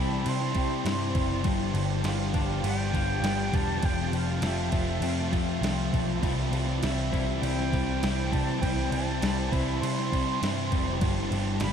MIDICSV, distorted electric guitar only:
0, 0, Header, 1, 2, 480
1, 0, Start_track
1, 0, Key_signature, 0, "major"
1, 0, Tempo, 597610
1, 1161, Time_signature, 4, 2, 24, 8
1, 9420, End_track
2, 0, Start_track
2, 0, Title_t, "Distorted electric guitar"
2, 0, Program_c, 0, 30
2, 0, Note_on_c, 0, 48, 80
2, 0, Note_on_c, 0, 55, 76
2, 0, Note_on_c, 0, 60, 86
2, 176, Note_off_c, 0, 48, 0
2, 186, Note_on_c, 0, 48, 98
2, 194, Note_off_c, 0, 55, 0
2, 202, Note_off_c, 0, 60, 0
2, 203, Note_on_c, 0, 55, 93
2, 211, Note_on_c, 0, 60, 111
2, 412, Note_off_c, 0, 60, 0
2, 422, Note_on_c, 0, 60, 83
2, 441, Note_off_c, 0, 55, 0
2, 451, Note_on_c, 0, 55, 61
2, 658, Note_off_c, 0, 48, 0
2, 668, Note_on_c, 0, 48, 81
2, 673, Note_off_c, 0, 55, 0
2, 683, Note_on_c, 0, 55, 80
2, 684, Note_off_c, 0, 60, 0
2, 693, Note_on_c, 0, 60, 76
2, 898, Note_off_c, 0, 60, 0
2, 908, Note_on_c, 0, 60, 76
2, 926, Note_off_c, 0, 55, 0
2, 935, Note_on_c, 0, 55, 64
2, 1140, Note_off_c, 0, 48, 0
2, 1140, Note_off_c, 0, 60, 0
2, 1143, Note_on_c, 0, 43, 91
2, 1153, Note_off_c, 0, 55, 0
2, 1159, Note_on_c, 0, 50, 106
2, 1168, Note_on_c, 0, 55, 112
2, 1382, Note_off_c, 0, 55, 0
2, 1392, Note_on_c, 0, 55, 77
2, 1405, Note_off_c, 0, 50, 0
2, 1415, Note_on_c, 0, 50, 71
2, 1613, Note_off_c, 0, 43, 0
2, 1623, Note_on_c, 0, 43, 75
2, 1629, Note_off_c, 0, 50, 0
2, 1639, Note_off_c, 0, 55, 0
2, 1639, Note_on_c, 0, 50, 80
2, 1648, Note_on_c, 0, 55, 88
2, 1856, Note_off_c, 0, 55, 0
2, 1865, Note_on_c, 0, 55, 83
2, 1886, Note_off_c, 0, 50, 0
2, 1896, Note_on_c, 0, 50, 72
2, 2096, Note_off_c, 0, 43, 0
2, 2105, Note_on_c, 0, 43, 97
2, 2110, Note_off_c, 0, 50, 0
2, 2120, Note_on_c, 0, 50, 108
2, 2123, Note_off_c, 0, 55, 0
2, 2133, Note_on_c, 0, 55, 100
2, 2327, Note_off_c, 0, 55, 0
2, 2337, Note_on_c, 0, 55, 81
2, 2353, Note_off_c, 0, 50, 0
2, 2363, Note_on_c, 0, 50, 61
2, 2573, Note_off_c, 0, 43, 0
2, 2583, Note_on_c, 0, 43, 75
2, 2587, Note_off_c, 0, 50, 0
2, 2597, Note_off_c, 0, 55, 0
2, 2597, Note_on_c, 0, 50, 83
2, 2607, Note_on_c, 0, 55, 78
2, 2815, Note_off_c, 0, 55, 0
2, 2825, Note_on_c, 0, 55, 81
2, 2840, Note_off_c, 0, 50, 0
2, 2850, Note_on_c, 0, 50, 67
2, 3054, Note_off_c, 0, 43, 0
2, 3058, Note_off_c, 0, 55, 0
2, 3058, Note_on_c, 0, 41, 96
2, 3068, Note_off_c, 0, 50, 0
2, 3071, Note_on_c, 0, 48, 105
2, 3080, Note_on_c, 0, 53, 109
2, 3302, Note_off_c, 0, 53, 0
2, 3311, Note_on_c, 0, 53, 78
2, 3326, Note_off_c, 0, 48, 0
2, 3336, Note_on_c, 0, 48, 71
2, 3549, Note_off_c, 0, 41, 0
2, 3558, Note_on_c, 0, 41, 77
2, 3562, Note_off_c, 0, 48, 0
2, 3570, Note_off_c, 0, 53, 0
2, 3572, Note_on_c, 0, 48, 76
2, 3580, Note_on_c, 0, 53, 85
2, 3784, Note_off_c, 0, 53, 0
2, 3793, Note_on_c, 0, 53, 82
2, 3812, Note_off_c, 0, 48, 0
2, 3822, Note_on_c, 0, 48, 68
2, 4020, Note_off_c, 0, 41, 0
2, 4029, Note_on_c, 0, 41, 105
2, 4035, Note_off_c, 0, 48, 0
2, 4045, Note_off_c, 0, 53, 0
2, 4045, Note_on_c, 0, 48, 98
2, 4054, Note_on_c, 0, 53, 102
2, 4266, Note_off_c, 0, 53, 0
2, 4276, Note_on_c, 0, 53, 86
2, 4294, Note_off_c, 0, 48, 0
2, 4304, Note_on_c, 0, 48, 57
2, 4505, Note_off_c, 0, 41, 0
2, 4514, Note_on_c, 0, 41, 74
2, 4518, Note_off_c, 0, 48, 0
2, 4528, Note_off_c, 0, 53, 0
2, 4528, Note_on_c, 0, 48, 77
2, 4537, Note_on_c, 0, 53, 76
2, 4733, Note_off_c, 0, 53, 0
2, 4743, Note_on_c, 0, 53, 67
2, 4757, Note_off_c, 0, 48, 0
2, 4767, Note_on_c, 0, 48, 58
2, 4978, Note_off_c, 0, 53, 0
2, 4979, Note_off_c, 0, 48, 0
2, 4984, Note_off_c, 0, 41, 0
2, 4988, Note_on_c, 0, 48, 95
2, 5000, Note_on_c, 0, 55, 94
2, 5015, Note_on_c, 0, 60, 107
2, 5224, Note_off_c, 0, 60, 0
2, 5227, Note_on_c, 0, 60, 86
2, 5250, Note_off_c, 0, 55, 0
2, 5253, Note_on_c, 0, 55, 64
2, 5470, Note_off_c, 0, 48, 0
2, 5473, Note_on_c, 0, 48, 76
2, 5490, Note_off_c, 0, 55, 0
2, 5493, Note_on_c, 0, 55, 89
2, 5498, Note_off_c, 0, 60, 0
2, 5502, Note_on_c, 0, 60, 96
2, 5713, Note_off_c, 0, 60, 0
2, 5716, Note_on_c, 0, 60, 83
2, 5735, Note_off_c, 0, 55, 0
2, 5738, Note_on_c, 0, 55, 76
2, 5951, Note_off_c, 0, 48, 0
2, 5954, Note_on_c, 0, 48, 96
2, 5967, Note_off_c, 0, 55, 0
2, 5970, Note_on_c, 0, 55, 93
2, 5973, Note_off_c, 0, 60, 0
2, 5983, Note_on_c, 0, 60, 95
2, 6188, Note_off_c, 0, 60, 0
2, 6197, Note_on_c, 0, 60, 71
2, 6215, Note_off_c, 0, 55, 0
2, 6218, Note_on_c, 0, 55, 60
2, 6432, Note_off_c, 0, 48, 0
2, 6442, Note_on_c, 0, 48, 71
2, 6452, Note_off_c, 0, 55, 0
2, 6455, Note_off_c, 0, 60, 0
2, 6455, Note_on_c, 0, 55, 75
2, 6465, Note_on_c, 0, 60, 81
2, 6669, Note_off_c, 0, 60, 0
2, 6678, Note_on_c, 0, 60, 75
2, 6700, Note_off_c, 0, 55, 0
2, 6703, Note_on_c, 0, 55, 55
2, 6916, Note_off_c, 0, 48, 0
2, 6926, Note_on_c, 0, 48, 94
2, 6940, Note_off_c, 0, 55, 0
2, 6943, Note_on_c, 0, 55, 92
2, 6944, Note_off_c, 0, 60, 0
2, 6953, Note_on_c, 0, 60, 113
2, 7157, Note_off_c, 0, 60, 0
2, 7166, Note_on_c, 0, 60, 81
2, 7188, Note_off_c, 0, 55, 0
2, 7191, Note_on_c, 0, 55, 66
2, 7397, Note_off_c, 0, 48, 0
2, 7406, Note_on_c, 0, 48, 68
2, 7416, Note_off_c, 0, 55, 0
2, 7420, Note_off_c, 0, 60, 0
2, 7420, Note_on_c, 0, 55, 81
2, 7430, Note_on_c, 0, 60, 78
2, 7636, Note_off_c, 0, 60, 0
2, 7646, Note_on_c, 0, 60, 87
2, 7667, Note_off_c, 0, 55, 0
2, 7670, Note_on_c, 0, 55, 70
2, 7880, Note_off_c, 0, 48, 0
2, 7890, Note_off_c, 0, 55, 0
2, 7890, Note_on_c, 0, 48, 94
2, 7899, Note_on_c, 0, 55, 95
2, 7902, Note_off_c, 0, 60, 0
2, 7912, Note_on_c, 0, 60, 114
2, 8112, Note_off_c, 0, 60, 0
2, 8121, Note_on_c, 0, 60, 81
2, 8136, Note_off_c, 0, 55, 0
2, 8146, Note_on_c, 0, 55, 65
2, 8347, Note_off_c, 0, 48, 0
2, 8356, Note_on_c, 0, 48, 88
2, 8360, Note_off_c, 0, 55, 0
2, 8370, Note_on_c, 0, 55, 71
2, 8373, Note_off_c, 0, 60, 0
2, 8382, Note_on_c, 0, 60, 85
2, 8595, Note_off_c, 0, 60, 0
2, 8605, Note_on_c, 0, 60, 77
2, 8618, Note_off_c, 0, 55, 0
2, 8627, Note_on_c, 0, 55, 62
2, 8825, Note_off_c, 0, 48, 0
2, 8829, Note_off_c, 0, 60, 0
2, 8840, Note_on_c, 0, 43, 95
2, 8841, Note_off_c, 0, 55, 0
2, 8852, Note_on_c, 0, 50, 102
2, 8867, Note_on_c, 0, 55, 123
2, 9077, Note_off_c, 0, 55, 0
2, 9087, Note_on_c, 0, 55, 82
2, 9107, Note_off_c, 0, 50, 0
2, 9116, Note_on_c, 0, 50, 63
2, 9317, Note_off_c, 0, 43, 0
2, 9326, Note_on_c, 0, 43, 78
2, 9328, Note_off_c, 0, 50, 0
2, 9337, Note_on_c, 0, 50, 74
2, 9342, Note_off_c, 0, 55, 0
2, 9351, Note_on_c, 0, 55, 86
2, 9420, Note_off_c, 0, 43, 0
2, 9420, Note_off_c, 0, 50, 0
2, 9420, Note_off_c, 0, 55, 0
2, 9420, End_track
0, 0, End_of_file